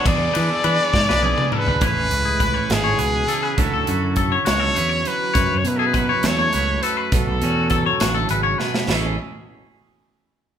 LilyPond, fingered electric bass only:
\new Staff \with { instrumentName = "Fingered electric bass" } { \clef bass \time 6/8 \key a \major \tempo 4. = 68 e,8 e16 r16 e16 r16 gis,16 b,,8 r8 d,16 | a,,16 a,,16 cis,4 gis,,8 cis,8 r8 | d,16 d,16 fis,4 cis,8 e,8 r8 | fis,16 fis,16 b,4 e,8 cis,8 r8 |
b,,16 b,,16 e,4 a,,8 gis,,8 r8 | a,,8 r2 r8 | }